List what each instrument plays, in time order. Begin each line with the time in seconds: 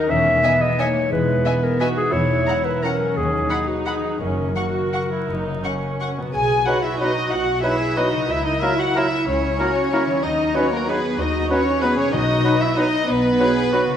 Already playing: harp D#3 F#3 D#4 F#4 A#4, clarinet A#4
0.09 double bass section E1, cello section E2, harp E3, viola section C#4, clarinet E5
0.26 harp G#3
0.43 viola section B3, harp D#4, violin section D#5 E5 G#5
0.60 harp G#4, clarinet D#5
0.78 viola section A#3, harp D#4, clarinet C#5, violin section D#5 E5 G#5
0.95 harp G#3
1.11 double bass section E1, cello section E2, harp E3, viola section G#3, clarinet B4
1.28 harp D#4
1.45 harp G#3, viola section B3, violin section D#5 E5 G#5
1.63 harp G#4, clarinet A#4
1.79 harp D#4, viola section F#4, clarinet B4, violin section D#5 E5 G#5
1.97 harp G#3, clarinet G#4
2.12 double bass section E1, cello section E2, harp E3, viola section E4, clarinet C#5
2.29 harp E4
2.46 harp F#3, viola section E4, violin section F#5 A#5
2.64 harp A#4, clarinet B4
2.82 viola section C#4, harp F#4, clarinet A#4, violin section F#5 A#5
3.00 harp F#3
3.15 cello section D#2, double bass section D#2, harp D#3, clarinet G#4
3.32 harp D#4
3.49 harp F#3, viola section D#4, violin section F#5 B5
3.68 clarinet F#4, harp B4
3.86 harp F#4, clarinet G#4, violin section F#5 B5
4.04 harp F#3
4.21 double bass section F#1, harp F#2, cello section F#2, viola section C#4, clarinet A#4
4.37 harp C#3
4.56 harp F#3, viola section F#4, violin section F#5 C#6
4.76 harp C#5
4.93 harp F#4, violin section F#5 C#6
5.11 harp F#3, viola section E4
5.29 double bass section F#1, cello section F#2, harp F#2, viola section D#4
5.47 harp C#3
5.64 harp F#3, viola section C#4, violin section F#5 C#6
5.83 harp C#5
6.00 harp F#4, violin section F#5 C#6
6.17 harp B2 F#3, viola section B3
6.21 harp F#3
6.25 harp F#4
6.30 french horn section G#4, harp B4
6.34 double bass section B1, viola section G#4, violin section G#5
6.65 bassoon F#3, violin section B3 D#4 F#5, french horn section F#4, clarinet F#4, cello section F#4, viola section F#4, oboe B4
6.82 french horn section E4, viola section E4, violin section E5
7.00 bassoon F#3, violin section B3 D#4 D#5, viola section D#4, french horn section D#4, clarinet F#4, oboe B4
7.31 double bass section B1, french horn section F#4, viola section F#4, violin section F#5
7.63 bassoon F#3, violin section B3 D#4 E5, viola section E4, french horn section E4, clarinet F#4, cello section G#4, oboe B4
7.97 bassoon F#3, violin section B3 D#4 D#5, french horn section D#4, viola section D#4, cello section F#4, clarinet F#4, oboe B4
8.11 harp C#3
8.16 harp F#3
8.21 harp E4
8.25 double bass section C#2, french horn section E4, viola section E4, harp A#4
8.30 cello section E4, violin section E5
8.44 viola section D#4, french horn section D#4, violin section D#5
8.61 bassoon F#3, violin section A#3 E4 E5, french horn section E4, clarinet E4, viola section E4, oboe A#4
8.78 french horn section F#4, viola section F#4, violin section F#5
8.95 bassoon F#3, violin section A#3 E4 E5, viola section E4, clarinet E4, french horn section E4, oboe A#4
9.28 double bass section C#2, viola section C#4, french horn section C#4, violin section C#5
9.59 bassoon F#3, violin section A#3 E4, clarinet E4, cello section F#4, oboe A#4
9.93 bassoon F#3, violin section A#3 E4, clarinet E4, cello section E4, oboe A#4
10.06 harp D#3
10.10 harp F#3
10.15 harp D#4
10.19 harp B4
10.23 double bass section D#2, french horn section D#4, viola section D#4, cello section D#4, violin section D#5
10.55 bassoon F#3, violin section B3 D#4 C#5, french horn section C#4, viola section C#4, clarinet D#4, cello section F#4, oboe B4
10.71 french horn section A#3, viola section A#3, violin section A#4
10.85 bassoon F#3, french horn section B3, viola section B3, violin section B3 D#4 B4, clarinet D#4, cello section G#4
10.90 oboe B4
11.17 double bass section D#2, french horn section D#4, viola section D#4, cello section F#4, violin section D#5
11.48 bassoon F#3, violin section B3 D#4 C#5, viola section C#4, french horn section C#4, clarinet D#4, oboe B4
11.81 bassoon F#3, french horn section B3, viola section B3, violin section B3 D#4 B4, clarinet D#4, cello section G#4, oboe B4
11.95 harp B2, viola section C#4, french horn section C#4, violin section C#5
12.00 harp F#3
12.04 harp D#4
12.09 viola section D#4, french horn section D#4, cello section F#4, harp B4
12.13 double bass section B1, timpani B2, violin section D#5
12.44 bassoon F#3, violin section B3 D#4, clarinet D#4, oboe B4
12.60 viola section E4, french horn section E4, violin section E5
12.75 bassoon F#3, violin section B3 D#4 D#5, french horn section D#4, clarinet D#4, viola section D#4, cello section D#4, oboe B4
13.06 double bass section B1, french horn section B3, viola section B3, violin section B4
13.39 bassoon F#3, violin section B3 D#4, clarinet D#4, cello section G#4, oboe B4
13.72 bassoon F#3, violin section B3 D#4, clarinet D#4, cello section F#4, oboe B4
13.85 harp C#3
13.90 harp A#3